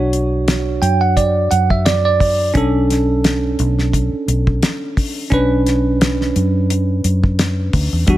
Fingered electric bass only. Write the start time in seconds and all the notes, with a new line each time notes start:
Already playing: B1
0.82 F#2
1.52 F#2
2.55 B1
3.59 B1
4.13 muted fingered electric bass stroke
4.28 B1
5.32 B1
6.36 F#2
7.04 F#2
7.74 D2
7.93 E2
8.08 E2